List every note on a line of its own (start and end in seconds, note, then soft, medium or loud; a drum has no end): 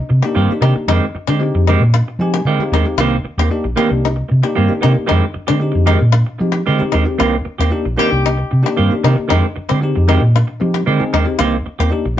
0.09 0.20 C3 medium
0.09 muted clean electric guitar stroke soft
0.22 0.37 A#3 medium
0.22 0.37 D4 medium
0.22 0.37 D#4 medium
0.22 0.39 G4 medium
0.22 0.37 G4 medium
0.22 muted clean electric guitar stroke soft
0.35 0.46 G2 medium
0.35 0.51 D#3 medium
0.35 0.51 A#3 medium
0.35 0.51 C4 medium
0.35 0.52 G4 medium
0.49 0.89 A#3 medium
0.49 0.89 D4 medium
0.49 0.90 D#4 medium
0.49 0.90 G4 medium
0.49 muted fingered electric bass stroke soft
0.61 0.72 C3 medium
0.61 0.75 D#3 medium
0.61 0.75 C4 medium
0.61 0.78 D#4 medium
0.61 0.75 G4 medium
0.76 muted clean electric guitar stroke soft
0.76 muted fingered electric bass stroke soft
0.88 0.98 F2 medium
0.88 1.04 D#3 medium
0.88 1.04 G#3 medium
0.88 1.05 C4 medium
0.88 1.04 D#4 medium
0.88 1.05 G4 loud
1.15 muted clean electric guitar stroke soft
1.15 muted fingered electric bass stroke soft
1.27 1.49 D3 medium
1.27 1.42 G#3 soft
1.27 1.41 C4 medium
1.27 1.44 D4 medium
1.27 1.41 G4 medium
1.39 1.80 G#3 medium
1.39 1.80 C4 medium
1.39 1.81 D#4 medium
1.39 1.80 G4 loud
1.39 muted clean electric guitar stroke soft
1.55 1.75 F2 medium
1.55 muted clean electric guitar stroke soft
1.67 1.81 D#3 medium
1.67 1.82 G#3 medium
1.67 1.82 C4 medium
1.67 1.83 D#4 medium
1.67 1.82 G4 loud
1.80 2.01 A#2 medium
1.80 muted clean electric guitar stroke soft
1.94 2.10 F4 medium
2.08 muted clean electric guitar stroke soft
2.19 2.40 F3 medium
2.19 2.40 G#3 medium
2.19 2.40 C4 medium
2.19 2.40 D#4 medium
2.19 2.40 G4 loud
2.19 2.45 G#5 medium
2.19 muted clean electric guitar stroke soft
2.34 2.50 G4 medium
2.34 muted clean electric guitar stroke soft
2.45 2.56 D3 medium
2.45 2.62 D#3 medium
2.45 2.63 G#3 medium
2.45 2.63 C4 medium
2.45 2.63 G4 medium
2.45 2.95 F5 medium
2.59 2.73 G#3 medium
2.59 2.73 C4 medium
2.59 2.73 D#4 medium
2.59 2.73 G4 medium
2.59 muted fingered electric bass stroke soft
2.72 2.82 D#2 loud
2.72 2.86 D#3 medium
2.72 2.86 G#3 medium
2.72 2.85 C4 medium
2.72 2.89 D#4 medium
2.72 2.85 G4 medium
2.84 2.98 G#3 medium
2.84 2.99 C4 medium
2.84 2.99 D#4 medium
2.84 2.99 G4 medium
2.84 muted clean electric guitar stroke soft
2.98 3.18 C2 medium
2.98 3.15 D#3 medium
2.98 3.15 A#3 medium
2.98 3.16 C4 medium
2.98 3.14 F4 medium
2.98 3.16 G4 medium
3.24 muted fingered electric bass stroke soft
3.24 muted clean electric guitar stroke soft
3.38 3.48 D#2 medium
3.38 3.50 A#3 soft
3.38 3.49 C4 medium
3.38 3.50 G4 medium
3.38 3.55 G4 medium
3.51 3.65 A#3 medium
3.51 3.65 D4 medium
3.51 3.65 D#4 medium
3.51 3.65 G4 loud
3.51 muted clean electric guitar stroke soft
3.64 3.75 A#1 medium
3.64 muted clean electric guitar stroke soft
3.76 3.90 D#3 medium
3.76 4.10 A#3 medium
3.76 3.90 A#3 medium
3.76 3.90 C4 medium
3.76 4.10 D4 medium
3.76 4.11 D#4 medium
3.76 3.89 G4 medium
3.76 3.93 G4 medium
3.76 4.11 G4 medium
3.90 4.21 C2 medium
3.90 muted clean electric guitar stroke soft
4.05 4.21 D#4 medium
4.16 muted clean electric guitar stroke soft
4.29 4.41 C3 medium
4.29 muted clean electric guitar stroke soft
4.43 4.56 A#3 medium
4.43 4.57 D4 medium
4.43 4.57 D#4 medium
4.43 4.59 G4 medium
4.43 4.57 G4 loud
4.43 muted clean electric guitar stroke soft
4.55 4.68 G2 medium
4.55 4.72 D#3 medium
4.55 4.72 A#3 medium
4.55 4.72 C4 medium
4.55 4.72 G4 medium
4.68 5.08 A#3 medium
4.68 5.08 D4 medium
4.68 5.09 D#4 medium
4.68 5.09 G4 medium
4.68 muted fingered electric bass stroke soft
4.81 4.94 C3 medium
4.81 4.95 D#3 medium
4.81 4.96 A#3 medium
4.81 4.93 C4 medium
4.81 4.99 D#4 medium
4.81 4.93 G4 medium
4.94 muted clean electric guitar stroke soft
4.94 muted fingered electric bass stroke soft
5.07 5.24 D#3 medium
5.07 5.24 G#3 medium
5.07 5.24 C4 medium
5.07 5.25 D#4 medium
5.07 5.24 G4 medium
5.11 5.20 F2 medium
5.34 muted clean electric guitar stroke soft
5.34 muted fingered electric bass stroke soft
5.47 5.70 D3 medium
5.47 5.59 G#3 soft
5.47 5.59 C4 soft
5.47 5.64 D4 medium
5.47 5.61 G4 medium
5.60 6.00 G#3 medium
5.60 6.01 C4 medium
5.60 6.01 D#4 medium
5.60 6.01 G4 medium
5.60 muted clean electric guitar stroke soft
5.72 5.95 F2 medium
5.72 muted clean electric guitar stroke soft
5.86 6.00 D#3 medium
5.86 5.99 G#3 medium
5.86 5.98 C4 medium
5.86 6.03 D#4 medium
5.86 5.98 G4 medium
5.99 6.22 A#2 medium
5.99 muted clean electric guitar stroke soft
6.12 6.29 F4 medium
6.26 muted clean electric guitar stroke soft
6.39 6.61 F3 medium
6.39 6.60 G#3 medium
6.39 6.60 C4 medium
6.39 6.61 D#4 medium
6.39 6.61 G4 medium
6.39 muted clean electric guitar stroke soft
6.52 6.69 G4 medium
6.52 muted clean electric guitar stroke soft
6.66 6.78 D3 medium
6.66 6.82 D#3 medium
6.66 6.83 G#3 medium
6.66 6.83 C4 medium
6.66 6.83 G4 medium
6.78 6.92 G#3 medium
6.78 6.92 C4 medium
6.78 6.93 D#4 medium
6.78 6.93 G4 medium
6.78 muted fingered electric bass stroke soft
6.92 7.04 D#2 medium
6.92 7.06 D#3 medium
6.92 7.05 G#3 medium
6.92 7.05 C4 medium
6.92 7.08 D#4 medium
6.92 7.04 G4 medium
7.05 7.19 G#3 medium
7.05 7.19 C4 medium
7.05 7.19 D#4 medium
7.05 7.19 G4 medium
7.05 muted clean electric guitar stroke soft
7.18 7.40 C2 medium
7.18 7.35 D#3 medium
7.18 7.35 A#3 medium
7.18 7.35 C4 medium
7.18 7.36 F4 medium
7.18 7.36 G4 medium
7.45 muted clean electric guitar stroke soft
7.45 muted fingered electric bass stroke soft
7.58 7.69 D#2 medium
7.58 7.71 A#3 soft
7.58 7.71 C4 soft
7.58 7.71 G4 medium
7.58 7.76 G4 medium
7.70 7.84 A#3 medium
7.70 7.85 D4 medium
7.70 7.85 D#4 medium
7.70 7.85 G4 medium
7.70 muted clean electric guitar stroke soft
7.85 7.96 A#1 medium
7.85 muted clean electric guitar stroke soft
7.97 8.11 D#3 medium
7.97 8.30 A#3 medium
7.97 8.11 A#3 medium
7.97 8.10 C4 medium
7.97 8.30 D4 medium
7.97 8.31 D#4 medium
7.97 8.31 G4 medium
7.97 8.10 G4 medium
7.97 8.66 G4 medium
8.11 8.42 C2 medium
8.11 muted clean electric guitar stroke medium
8.26 8.41 D#4 medium
8.37 muted clean electric guitar stroke soft
8.51 8.62 C3 medium
8.51 muted clean electric guitar stroke soft
8.63 8.76 A#3 medium
8.63 8.76 D4 medium
8.63 8.77 D#4 medium
8.63 8.77 G4 medium
8.63 8.81 G4 medium
8.63 muted clean electric guitar stroke soft
8.77 8.89 G2 medium
8.77 8.93 D#3 medium
8.77 8.93 A#3 medium
8.77 8.93 C4 medium
8.77 8.93 G4 medium
8.90 9.30 A#3 medium
8.90 9.30 D4 medium
8.90 9.30 D#4 medium
8.90 9.31 G4 medium
8.90 muted fingered electric bass stroke soft
9.04 9.14 C3 medium
9.04 9.17 D#3 medium
9.04 9.16 A#3 medium
9.04 9.16 C4 medium
9.04 9.20 D#4 medium
9.04 9.15 G4 medium
9.16 muted clean electric guitar stroke soft
9.16 muted fingered electric bass stroke soft
9.28 9.41 F2 medium
9.28 9.45 D#3 medium
9.28 9.45 G#3 medium
9.28 9.45 C4 medium
9.28 9.46 D#4 medium
9.28 9.45 G4 loud
9.56 muted clean electric guitar stroke soft
9.56 muted fingered electric bass stroke soft
9.69 9.91 D3 medium
9.69 9.80 G#3 soft
9.69 9.85 C4 medium
9.69 9.80 C4 medium
9.69 9.80 G4 medium
9.81 10.21 G#3 medium
9.81 10.22 C4 medium
9.81 10.22 D#4 medium
9.81 10.22 G4 medium
9.81 muted clean electric guitar stroke soft
9.96 10.17 F2 loud
9.96 muted clean electric guitar stroke soft
10.08 10.21 D#3 medium
10.08 10.20 G#3 medium
10.08 10.20 C4 medium
10.08 10.25 D#4 medium
10.08 10.22 G4 medium
10.21 10.42 A#2 medium
10.21 muted clean electric guitar stroke soft
10.36 10.51 F4 medium
10.47 muted clean electric guitar stroke soft
10.60 10.82 F3 medium
10.60 10.80 G#3 medium
10.60 10.80 C4 medium
10.60 10.81 D#4 medium
10.60 10.81 G4 medium
10.60 muted clean electric guitar stroke soft
10.74 10.90 G4 medium
10.74 muted clean electric guitar stroke soft
10.86 10.98 D3 medium
10.86 11.03 D#3 medium
10.86 11.03 G#3 medium
10.86 11.03 C4 medium
10.86 11.03 G4 medium
11.00 11.13 G#3 medium
11.00 11.13 C4 medium
11.00 11.13 D#4 medium
11.00 11.13 G#4 medium
11.00 muted fingered electric bass stroke soft
11.13 11.24 D#2 loud
11.13 11.27 D#3 medium
11.13 11.26 G#3 medium
11.13 11.26 C4 medium
11.13 11.30 D#4 medium
11.13 11.25 G4 medium
11.25 11.39 G#3 medium
11.25 11.39 C4 medium
11.25 11.39 D#4 medium
11.25 11.39 G4 medium
11.25 muted clean electric guitar stroke soft
11.39 11.60 C2 medium
11.39 11.55 D#3 medium
11.39 11.55 A#3 medium
11.39 11.56 C4 loud
11.39 11.55 F4 medium
11.39 11.56 G4 medium
11.66 muted clean electric guitar stroke soft
11.66 muted fingered electric bass stroke soft
11.79 11.90 D#2 medium
11.79 11.91 A#3 soft
11.79 11.92 C4 soft
11.79 11.92 G4 medium
11.79 11.96 G4 medium
11.90 12.04 A#3 medium
11.90 12.04 D4 medium
11.90 12.05 D#4 medium
11.90 12.05 G4 loud
11.90 muted clean electric guitar stroke soft
12.05 12.16 A#1 medium
12.05 muted clean electric guitar stroke soft